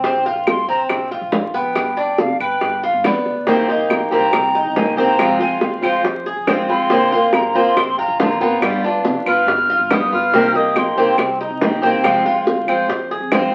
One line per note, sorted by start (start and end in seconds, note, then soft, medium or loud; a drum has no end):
0.04 0.45 A#1 medium
0.04 0.25 C4 medium
0.04 high bongo medium
0.26 0.67 F4 medium
0.26 high bongo soft
0.47 0.67 G1 medium
0.47 0.68 C6 medium
0.47 high bongo medium
0.47 claves medium
0.68 0.89 A#1 medium
0.68 1.10 C4 medium
0.68 0.82 A#5 loud
0.89 1.20 A#1 medium
0.89 high bongo medium
0.89 claves medium
1.11 1.53 F4 medium
1.11 high bongo soft
1.21 1.52 A#1 medium
1.32 high bongo medium
1.32 low bongo medium
1.54 1.75 A#1 medium
1.54 1.96 B3 medium
1.54 2.22 G5 medium
1.54 high bongo soft
1.76 2.17 G1 medium
1.76 high bongo medium
1.76 claves medium
1.97 2.39 D4 medium
1.97 high bongo soft
2.18 2.39 F1 medium
2.18 2.40 F5 medium
2.18 high bongo medium
2.39 2.60 G1 medium
2.39 2.82 B4 medium
2.39 2.86 G5 medium
2.39 claves medium
2.61 2.92 G1 medium
2.61 high bongo medium
2.83 3.04 F4 medium
2.83 3.08 F5 medium
2.83 high bongo soft
2.93 3.03 G1 medium
3.04 3.24 F2 medium
3.04 3.46 B3 medium
3.04 3.48 D5 medium
3.04 high bongo medium
3.04 low bongo medium
3.04 claves medium
3.26 3.45 D2 medium
3.26 high bongo soft
3.47 3.88 C2 loud
3.47 3.68 C3 medium
3.47 3.68 D#3 medium
3.47 3.68 A#3 medium
3.47 3.68 C4 medium
3.47 3.69 C4 medium
3.47 3.67 G4 medium
3.47 high bongo medium
3.68 4.11 A#3 soft
3.68 4.11 C4 soft
3.68 4.11 D#4 medium
3.68 4.10 G4 soft
3.68 high bongo soft
3.90 4.10 A#1 medium
3.90 high bongo medium
3.90 claves medium
4.11 4.32 C2 medium
4.11 4.32 D#3 medium
4.11 4.32 A#3 medium
4.11 4.32 C4 medium
4.11 4.54 C4 medium
4.11 4.32 G4 medium
4.11 4.80 A#5 loud
4.33 4.64 C2 medium
4.33 muted steel-string acoustic guitar stroke medium
4.33 high bongo medium
4.33 claves medium
4.55 4.96 D#4 medium
4.55 high bongo soft
4.65 4.96 C2 medium
4.76 4.97 D#3 soft
4.76 4.97 A#3 soft
4.76 4.96 C4 soft
4.76 4.95 G4 medium
4.76 4.99 G#5 medium
4.76 high bongo medium
4.76 low bongo medium
4.97 5.18 C2 medium
4.97 5.18 D#3 medium
4.97 5.18 A#3 medium
4.97 5.18 C4 medium
4.97 5.39 C4 medium
4.97 5.18 G4 medium
4.97 5.38 A#5 loud
4.97 high bongo soft
5.18 5.59 F2 medium
5.18 5.39 C3 medium
5.18 5.39 F3 medium
5.18 5.40 G#3 medium
5.18 5.40 C4 medium
5.18 5.39 F4 medium
5.18 high bongo medium
5.18 claves medium
5.40 5.82 G#3 soft
5.40 5.81 C4 soft
5.40 5.81 F4 medium
5.40 5.82 F4 medium
5.40 5.66 G#5 medium
5.40 high bongo soft
5.61 5.82 D2 medium
5.61 6.06 F5 medium
5.61 high bongo medium
5.82 6.03 F2 medium
5.82 6.03 F3 medium
5.82 6.04 G#3 medium
5.82 6.04 C4 medium
5.82 6.03 F4 medium
5.82 6.25 C5 medium
5.82 claves medium
6.04 6.35 F2 loud
6.04 muted steel-string acoustic guitar stroke medium
6.04 high bongo medium
6.26 6.47 G#4 medium
6.26 high bongo soft
6.36 6.67 F2 medium
6.47 6.68 F3 soft
6.47 6.68 G#3 medium
6.47 6.89 C4 medium
6.47 6.68 C4 medium
6.47 6.67 F4 medium
6.47 high bongo medium
6.47 low bongo medium
6.47 claves medium
6.69 6.89 F2 medium
6.69 6.90 F3 medium
6.69 6.90 G#3 medium
6.69 6.90 C4 medium
6.69 6.89 F4 medium
6.69 7.37 C6 loud
6.69 high bongo soft
6.90 7.31 A#1 loud
6.90 7.12 D3 medium
6.90 7.12 A#3 medium
6.90 7.12 C4 medium
6.90 7.12 F4 medium
6.90 high bongo medium
7.11 7.55 A#3 soft
7.11 7.54 C4 soft
7.11 7.54 F4 medium
7.11 high bongo soft
7.32 7.53 G1 medium
7.32 7.58 A#5 medium
7.32 high bongo medium
7.32 claves medium
7.54 7.75 A#1 medium
7.54 7.76 A#3 medium
7.54 7.76 C4 medium
7.54 7.97 C4 medium
7.54 7.75 F4 medium
7.54 7.98 C6 loud
7.76 8.07 A#1 loud
7.76 muted steel-string acoustic guitar stroke medium
7.76 high bongo medium
7.76 claves medium
7.98 8.40 F4 medium
7.98 8.18 A#5 medium
7.98 high bongo soft
8.08 8.39 A#1 medium
8.20 8.40 D3 medium
8.20 8.40 A#3 medium
8.20 8.40 C4 soft
8.20 8.39 F4 medium
8.20 8.61 A#5 medium
8.20 high bongo medium
8.20 low bongo medium
8.40 8.61 G#1 medium
8.40 8.62 A#3 medium
8.40 8.83 B3 medium
8.40 8.61 C4 medium
8.40 8.61 F4 medium
8.40 high bongo soft
8.62 9.03 G1 loud
8.62 8.83 G3 medium
8.62 8.83 B3 medium
8.62 8.83 F4 medium
8.62 high bongo medium
8.62 claves medium
8.84 9.26 B3 soft
8.84 9.25 D4 medium
8.84 9.25 F4 medium
8.84 high bongo soft
9.05 9.25 F1 medium
9.05 high bongo medium
9.26 9.46 G1 medium
9.26 9.47 B3 medium
9.26 9.47 F4 medium
9.26 9.68 B4 medium
9.26 9.95 F6 loud
9.26 claves medium
9.47 9.78 G1 loud
9.47 muted steel-string acoustic guitar stroke medium
9.47 high bongo medium
9.69 9.90 F4 medium
9.69 high bongo soft
9.79 10.10 G1 medium
9.90 10.11 G3 soft
9.90 10.32 B3 medium
9.90 10.12 B3 soft
9.90 10.11 F4 medium
9.90 10.13 D#6 loud
9.90 high bongo medium
9.90 low bongo medium
9.90 claves medium
10.11 10.32 G1 medium
10.11 10.33 B3 medium
10.11 10.33 F4 medium
10.11 10.57 F6 loud
10.11 high bongo soft
10.32 10.73 C2 loud
10.32 10.54 C3 medium
10.32 10.54 D#3 medium
10.32 10.54 A#3 medium
10.32 10.54 C4 medium
10.32 10.53 G4 medium
10.32 high bongo medium
10.54 10.97 A#3 soft
10.54 10.96 C4 soft
10.54 10.96 D#4 medium
10.54 10.96 G4 soft
10.54 10.79 D#6 medium
10.54 high bongo soft
10.75 10.96 A#1 medium
10.75 11.20 C6 medium
10.75 high bongo medium
10.75 claves medium
10.97 11.17 C2 medium
10.97 11.17 D#3 medium
10.97 11.17 A#3 medium
10.97 11.17 C4 medium
10.97 11.39 C4 medium
10.97 11.17 G4 medium
11.18 11.49 C2 medium
11.18 muted steel-string acoustic guitar stroke medium
11.18 high bongo medium
11.18 claves medium
11.41 11.82 D#4 medium
11.41 high bongo soft
11.50 11.81 C2 medium
11.61 11.82 D#3 medium
11.61 11.82 A#3 soft
11.61 11.81 C4 soft
11.61 11.80 G4 medium
11.61 high bongo medium
11.61 low bongo medium
11.82 12.03 C2 medium
11.82 12.03 D#3 medium
11.82 12.04 A#3 medium
11.82 12.03 C4 medium
11.82 12.25 C4 loud
11.82 12.03 G4 medium
11.82 12.07 G5 loud
11.82 high bongo soft
12.03 12.44 F2 loud
12.03 12.24 C3 medium
12.03 12.24 F3 medium
12.03 12.24 G#3 medium
12.03 12.24 C4 medium
12.03 12.23 F4 medium
12.03 12.47 F5 medium
12.03 high bongo medium
12.03 claves medium
12.24 12.67 G#3 soft
12.24 12.67 C4 soft
12.24 12.67 F4 soft
12.24 12.67 F4 medium
12.24 high bongo soft
12.46 12.66 D2 medium
12.46 high bongo medium
12.67 12.88 F2 medium
12.67 12.88 F3 medium
12.67 12.88 G#3 medium
12.67 12.89 C4 medium
12.67 12.89 F4 medium
12.67 13.10 C5 medium
12.67 claves medium
12.88 13.19 F2 loud
12.88 muted steel-string acoustic guitar stroke medium
12.88 high bongo medium
13.11 13.32 G#4 medium
13.11 high bongo soft
13.20 13.51 F2 medium
13.31 13.52 F3 medium
13.31 13.53 G#3 medium
13.31 13.52 C4 soft
13.31 13.54 C4 medium
13.31 13.52 F4 medium
13.31 high bongo medium
13.31 low bongo medium
13.31 claves medium